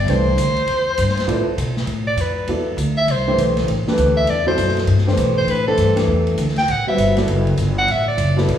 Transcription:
Already playing: D5
0.06 C2 E3 A3 D4 G4 C5, ride
0.11 C5
0.37 D2, hi-hat pedal, ride
0.57 ride
0.67 E2, ride
0.98 G2, hi-hat pedal, ride
1.09 snare
1.17 snare, ride
1.27 A2 F3 B3 E4 A4 D5, ride
1.47 muted upright bass stroke
1.57 B2, hi-hat pedal, ride
1.77 snare
1.86 A2, ride
2.07 D5
2.16 F2, hi-hat pedal, ride
2.21 B4
2.47 E2 F#3 B3 E4 A4 D5, ride
2.77 D2, hi-hat pedal, ride
2.97 E5
3.07 C2, ride
3.11 C5
3.27 E3 A3 D4 G4 C5
3.36 B1, hi-hat pedal, ride
3.57 snare, ride
3.67 A1, ride
3.86 E3 A3 D4 G4 B4, muted upright bass stroke, snare
3.98 D2, hi-hat pedal, ride
4.17 E5
4.27 E2 D5, ride
4.46 B2 F#3 E4 A4 C5 D5
4.58 F#2, hi-hat pedal, ride
4.69 snare
4.77 snare, ride
4.87 G2, ride
4.98 snare
5.07 E3 A3 D4 G4 C5, snare
5.17 B2, hi-hat pedal, ride
5.38 C5
5.46 A2 B4, ride
5.67 E3 A3 D4 G4 A4 C5
5.77 G2, hi-hat pedal, ride
5.96 E3 A3 D4 G4 A4, snare, ride
6.07 E2
6.27 ride
6.38 D2, hi-hat pedal, ride
6.48 snare
6.56 G5, snare, ride
6.68 A1 F#5, ride
6.87 G3 C4 F#4 B4 E5, muted upright bass stroke
6.97 G1, hi-hat pedal, ride
7.17 F#3 B3 E4 A4 D5, snare, ride
7.27 F#1, ride
7.47 ride
7.57 G1, hi-hat pedal, ride
7.78 F#5
7.87 A1 E5, ride
8.08 D5
8.17 F#1, hi-hat pedal, ride
8.37 F#3 B3 E4 A4 D5, snare
8.48 A1, ride

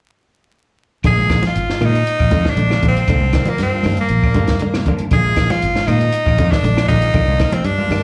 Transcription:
1.04 A#1 D3 D#3 G#3 D#4 F4 G#4, kick, closed hi-hat, low conga, claves
1.17 G#3 D#4 F4, high conga
1.30 A#1 D#3 G#3 D#4 F4, kick, snare, closed hi-hat, claves
1.43 F3, snare, closed hi-hat, high conga
1.47 F4
1.56 G#1, closed hi-hat
1.69 G#3 D#4 F4, snare
1.81 A#2 D#3 G#3 D#4 F4, closed hi-hat, high conga, claves
1.85 D#4
1.95 closed hi-hat
2.07 closed hi-hat
2.19 A#1 G#3 D#4 F4, kick, claves
2.30 F2 D3 D#3 G#3 D#4 F4, kick, closed hi-hat, high conga
2.45 D#3, muted fingered electric bass stroke, kick, snare
2.50 D4
2.56 A#1 D3, closed hi-hat, high conga
2.70 C3 G#3 D#4 F4, snare, high conga, claves
2.83 A#1 D3 D#3 G#3 D#4 F4, kick, closed hi-hat, low conga
2.88 C4
2.97 closed hi-hat
3.08 C2 D3 D#3 A#3 D4 F4, kick, closed hi-hat, low conga, claves
3.20 A#3 D4 F4, high conga
3.33 D#3 A#3 D4 F4, kick, snare, closed hi-hat, claves
3.46 F3 A#3, muted fingered electric bass stroke, closed hi-hat, high conga, low conga
3.58 G2 C4, snare, closed hi-hat
3.72 A#3 D4 F4
3.83 G2 D#3 A#3 D4 F4, open hi-hat, high conga, claves
3.97 A#3, closed hi-hat
4.09 A#1, closed hi-hat
4.23 A#3 D4 F4, kick, claves
4.34 G2 D3 D#3 A#3 D4 F4, kick, closed hi-hat, high conga
4.47 D#3, kick, snare, closed hi-hat
4.59 D3, closed hi-hat, high conga
4.74 C3 A#3 D4 F4, snare, high conga, claves
4.86 D3 D#3 A#3 D4 F4, kick, closed hi-hat, low conga
4.99 closed hi-hat
5.11 A#1 D3 D#3 G#3 D#4 F4 G#4, kick, closed hi-hat, low conga, claves
5.25 G#3 D#4 F4
5.36 A#1 D#3 G#3 D#4 F4, kick, snare, closed hi-hat, claves
5.50 F3 F4, snare, closed hi-hat, high conga
5.62 G#1, closed hi-hat
5.75 G#3 D#4 F4, snare, high conga
5.87 A#2 D#3 G#3 D#4 F4, closed hi-hat, high conga, claves
6.01 closed hi-hat
6.12 closed hi-hat
6.25 A#1 G#3 D#4 F4, kick, claves
6.38 F2 D3 D#3 G#3 D#4 F4, kick, closed hi-hat, high conga
6.52 D#3 D4, muted fingered electric bass stroke, kick, snare
6.63 A#1 D3, closed hi-hat, high conga
6.77 G#3 D#4 F4, muted clean electric guitar stroke, snare, high conga, claves
6.88 A#1 D3 D#3 G#3 D#4 F4, kick, closed hi-hat, high conga, low conga
7.02 closed hi-hat
7.14 C2 D3 D#3 A#3 D4 F4, kick, closed hi-hat, low conga, claves
7.27 A#3 D4 F4, high conga
7.39 D#3 A#3 D4 F4, kick, snare, closed hi-hat, claves
7.52 F3 C4, muted fingered electric bass stroke, closed hi-hat, high conga
7.64 G2 D4, closed hi-hat
7.78 A#3 D4 F4, high conga
7.90 G2 D#3 A#3 D4 F4, open hi-hat, high conga, claves

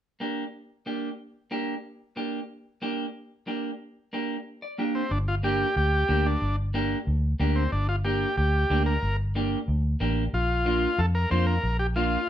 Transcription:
0.20 A#3 D4 G4
0.86 A#3 D4 G4
1.51 A#3 D4 G4
2.16 A#3 D4 G4
2.82 A#3 D4 G4
3.47 A#3 D4 G4
4.13 A#3 D4 G4
4.62 D5
4.78 A#3 D4 G4 G5
4.95 C4
5.11 G1 D4
5.28 F4
5.43 A#3 D4 G4
5.76 D2 G4
6.08 D2 A#3 D4 G4
6.26 D4
6.42 G1
6.74 A#3 D4 G4
7.07 D2
7.40 D2 A#3 D4 G4
7.56 C4
7.72 G1 D4
7.89 F4
8.05 A#3 D4 G4
8.37 D2 G4
8.70 D2 A#3 D4 G4
8.86 A#4
9.03 G1
9.35 A#3 D4 G4
9.68 D2
10.00 A1 A#3 D4 G4
10.33 A#1 F4
10.65 A#3 D4 F4
10.98 F2 A4
11.15 A#4
11.30 F2 A#3 D4 F4 C5
11.47 A#4
11.63 A#1
11.79 G4
11.96 A#3 D4 F4

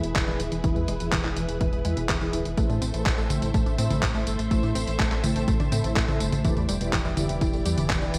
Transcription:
Already playing: E3 E4 G#4 B4 E5
0.03 E1 B2, closed hi-hat
0.16 E1 E3, kick, clap, closed hi-hat
0.28 E1 E3 E4 G#4 B4 E5, closed hi-hat
0.40 D1 E3, closed hi-hat
0.52 E1 E3, closed hi-hat
0.64 E1 E3 E4 G#4 B4 E5, kick, closed hi-hat
0.76 E2 G#3, closed hi-hat
0.88 E1 G#3, closed hi-hat
1.00 E1 B2 E3 E4 G#4 B4 E5, closed hi-hat
1.12 E1 E3, kick, clap, closed hi-hat
1.24 E1 E3, clap, closed hi-hat
1.36 E1 E3 E4 G#4 B4 G#5, closed hi-hat
1.48 E1 E3, closed hi-hat
1.61 E1 E3, kick, closed hi-hat
1.73 E1 G#3, closed hi-hat
1.85 E2 E3 G#3 E4 G#4 B4 E5, closed hi-hat
1.97 E1 B2, closed hi-hat
2.09 E1 E3, kick, clap, closed hi-hat
2.21 E1 E3 E4 G#4 B4 E5, closed hi-hat
2.33 D1 E3, closed hi-hat
2.45 E1 E3, closed hi-hat
2.57 A1 A3 E4 A4 C5 E5, kick, closed hi-hat, tambourine
2.69 A2 D4, closed hi-hat, tambourine
2.81 A1 C4, closed hi-hat, tambourine
2.94 A1 E3 A3 E4 A4 C5 E5, closed hi-hat, tambourine
3.06 A1 A3, kick, clap, closed hi-hat, tambourine
3.18 A1 A3, closed hi-hat, tambourine
3.30 A1 A3 E4 A4 C5 G5, closed hi-hat, high tom, tambourine
3.42 A1 A3, closed hi-hat, tambourine
3.54 A1 A3, kick, closed hi-hat, tambourine
3.66 A1 D4, closed hi-hat, tambourine
3.78 A2 A3 C4 E4 A4 C5 E5, closed hi-hat, tambourine
3.90 A1 E3, closed hi-hat, high tom, tambourine
4.03 A1 A3, kick, clap, closed hi-hat, tambourine
4.15 A1 A3 E4 A4 C5 E5, closed hi-hat, tambourine
4.27 G1 A3, closed hi-hat, tambourine
4.39 A1 A3, closed hi-hat, tambourine
4.51 A1 A3 E4 A4 C5 E5, kick, closed hi-hat, tambourine
4.63 A2 D4, closed hi-hat, tambourine
4.75 A1 C4, closed hi-hat, tambourine
4.87 A1 E3 A3 E4 A4 C5 E5, closed hi-hat, tambourine
4.99 A1 A3, kick, clap, closed hi-hat, tambourine
5.11 A1 A3, clap, closed hi-hat, tambourine
5.24 A1 A3 E4 A4 C5 G5, closed hi-hat, high tom, tambourine
5.36 A1 A3, closed hi-hat, tambourine
5.48 A1 A3, kick, closed hi-hat, tambourine
5.60 A1 D4, closed hi-hat, high tom, tambourine
5.72 A2 A3 C4 E4 A4 C5 E5, closed hi-hat, tambourine
5.84 A1 E3, closed hi-hat, tambourine
5.96 A1 A3, kick, clap, closed hi-hat, tambourine
6.08 A1 A3 E4 A4 C5 E5, closed hi-hat, high tom, tambourine
6.20 G1 A3, closed hi-hat, tambourine
6.32 A1 A3, closed hi-hat, high tom, tambourine
6.44 E1 E3 E4 G4 B4 D5, kick, closed hi-hat, tambourine
6.57 E2 A3, closed hi-hat, tambourine
6.69 E1 G3, closed hi-hat, tambourine
6.81 E1 B2 E3 E4 G4 B4 D5, closed hi-hat, tambourine
6.93 E1 E3, kick, clap, closed hi-hat, tambourine
7.05 E1 E3, closed hi-hat, tambourine
7.17 E1 E3 E4 G4 B4 E5, closed hi-hat, high tom, tambourine
7.29 E1 E3, closed hi-hat, tambourine
7.41 E1 E3, kick, closed hi-hat, tambourine
7.53 E1 A3, closed hi-hat, tambourine
7.65 E2 E3 G3 E4 G4 B4 D5, closed hi-hat, tambourine
7.78 E1 B2, closed hi-hat, high tom, tambourine
7.90 E1 E3, kick, clap, closed hi-hat, tambourine
8.02 E1 E3 E4 G4 B4 D5, closed hi-hat, tambourine
8.14 D1 E3, closed hi-hat, tambourine

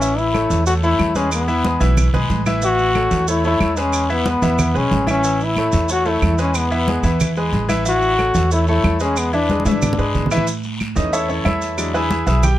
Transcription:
Already playing: A1 C#4
0.01 E3 E4 E5, high conga, long guiro, maracas
0.18 E4, high conga, maracas
0.34 A3 A4 C#5, high conga, short guiro, claves, maracas
0.50 E2, high conga, short guiro, maracas
0.67 A3 F#4 A4 C#5, high conga, long guiro, maracas
0.83 A3 E4 A4 C#5, high conga, maracas
0.99 E2, high conga, short guiro, claves, maracas
1.15 G#3 C#4 G#4 B4, high conga, short guiro, maracas
1.32 B3, high conga, long guiro, claves, maracas
1.48 E3 E4 E5, high conga, maracas
1.64 G#3 G#4 B4, high conga, short guiro, maracas
1.80 B1 E3 E4 E5, short guiro, maracas
1.97 high conga, low conga, long guiro, claves, maracas
2.13 B1 G#3 G#4 B4, high conga, low conga, maracas
2.30 A1, high conga, short guiro, maracas
2.46 E3 E4 E5, high conga, short guiro, claves, maracas
2.62 E3 E4 F#4 E5, long guiro, maracas
2.79 high conga, maracas
2.95 A3 A4 C#5, high conga, short guiro, claves, maracas
3.11 E2, high conga, short guiro, maracas
3.28 A3 E4 A4 C#5, high conga, long guiro, maracas
3.44 A3 E4 A4 C#5, high conga, maracas
3.61 E2, high conga, short guiro, claves, maracas
3.77 G#3 C#4 G#4 B4, short guiro, maracas
3.93 high conga, long guiro, claves, maracas
4.09 E3 B3 E4 E5, high conga, maracas
4.26 G#3 G#4 B4, high conga, short guiro, maracas
4.42 E2 E3 E4 E5, short guiro, maracas
4.59 high conga, low conga, long guiro, claves, maracas
4.75 B1 G#3 C#4 G#4 B4, high conga, maracas
4.91 A1, high conga, short guiro, maracas
5.07 E3 C#4 E4 E5, high conga, short guiro, claves, maracas
5.24 E3 E4 E5, high conga, long guiro, maracas
5.40 E4, high conga, maracas
5.56 A3 A4 C#5, high conga, short guiro, claves, maracas
5.72 E2, high conga, short guiro, maracas
5.89 A3 F#4 A4 C#5, high conga, long guiro, maracas
6.05 A3 E4 A4 C#5, high conga, maracas
6.22 E2, high conga, short guiro, claves, maracas
6.38 G#3 C#4 G#4 B4, short guiro, maracas
6.54 B3, high conga, long guiro, claves, maracas
6.71 E3 E4 E5, high conga, maracas
6.87 G#3 G#4 B4, high conga, short guiro, maracas
7.03 E2 E3 E4 E5, short guiro, maracas
7.20 high conga, low conga, long guiro, claves, maracas
7.36 G#3 G#4 B4, high conga, maracas
7.53 A1, high conga, short guiro, maracas
7.69 E3 E4 E5, high conga, short guiro, claves, maracas
7.85 E3 E4 F#4 E5, high conga, long guiro, maracas
8.02 high conga, maracas
8.18 A3 A4 C#5, high conga, short guiro, claves, maracas
8.35 E2, high conga, short guiro, maracas
8.51 A3 E4 A4 C#5, high conga, long guiro, maracas
8.67 A3 E4 A4 C#5, high conga, maracas
8.84 E2, high conga, short guiro, claves, maracas
9.00 G#3 C#4 G#4 B4, short guiro, maracas
9.17 B3, high conga, long guiro, claves, maracas
9.33 E3 D4 E4 E5, high conga, maracas
9.49 G#3 G#4 B4, high conga, short guiro, maracas
9.60 high conga
9.65 G#2 E3 D4 E4 E5, short guiro, maracas
9.71 high conga
9.82 low conga, long guiro, claves, maracas
9.93 low conga
9.98 G#2 G#3 G#4 B4, maracas
10.15 A2, low conga, short guiro, maracas
10.26 low conga
10.31 E3 E4 E5, short guiro, claves, maracas
10.37 low conga
10.47 high conga, long guiro, maracas
10.63 high conga, maracas
10.80 high conga, short guiro, claves, maracas
10.95 E2 E3 A3 C#4 D#4 D#5, high conga, short guiro, maracas
11.13 E4 A4 C#5 E5, high conga, long guiro, maracas
11.29 C#4 E4 A4 C#5, high conga, maracas
11.45 E2 E4 A4 C#5 E5, high conga, short guiro, claves, maracas
11.62 short guiro, maracas
11.77 F#3 G#3 D4, high conga, long guiro, claves, maracas
11.94 E4 G#4 B4 E5, high conga, maracas
12.11 high conga, short guiro, maracas
12.27 B1 E4 G#4 B4 E5, high conga, short guiro, maracas
12.43 G4 G5, high conga, low conga, long guiro, claves, maracas

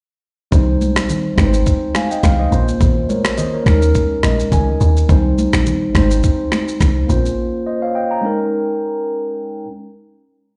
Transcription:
0.51 C2 G3 C4 D#4 C5, kick, low conga, shaker
0.81 high conga, shaker
0.96 A#1, finger snap, cross-stick, shaker
1.09 low conga, shaker
1.35 G#1 G#3 C4 D#4, finger snap, kick, cross-stick, high conga, shaker
1.40 B4
1.47 C5
1.53 shaker
1.66 kick, shaker
1.95 F5 G#5, finger snap, cross-stick, high conga, shaker
2.11 D#5 G5, shaker
2.23 C2 F5, finger snap, kick, cross-stick, high conga, low conga, shaker
2.39 C5 D#5
2.50 A#1 A#3 C#4 F4, shaker
2.55 C5
2.68 shaker
2.80 A#1, kick, low conga, shaker
3.09 A#4 C#5, high conga, shaker
3.24 finger snap, cross-stick, shaker
3.37 C5 D#5, low conga, shaker
3.54 A#4 C#5
3.64 D#2 G#3 C#4 D#4, finger snap, kick, cross-stick, high conga, shaker
3.69 A#4
3.82 shaker
3.95 kick, shaker
4.23 A#1 D#5, finger snap, cross-stick, high conga, shaker
4.39 shaker
4.52 C#2 G#5, kick, high conga, low conga, shaker
4.81 D#2, shaker
4.97 shaker
5.08 C2 G3 C4 D#4 C5, kick, low conga, shaker
5.38 high conga, shaker
5.53 A#1, finger snap, cross-stick, shaker
5.66 low conga, shaker
5.93 G#1 G#3 C4 D#4, finger snap, kick, cross-stick, high conga, shaker
5.98 C5
6.10 shaker
6.23 kick, shaker
6.52 finger snap, cross-stick, high conga, shaker
6.68 shaker
6.81 C2, finger snap, kick, cross-stick, high conga, low conga, shaker
7.07 A#1 A#3 C4 F4, shaker
7.12 C#4 C5
7.25 shaker
7.66 C5 D#5
7.82 C#5 F5
7.95 D#5 G5
8.11 G5 A#5
8.21 G#3 C#4 D#4
8.26 A#4

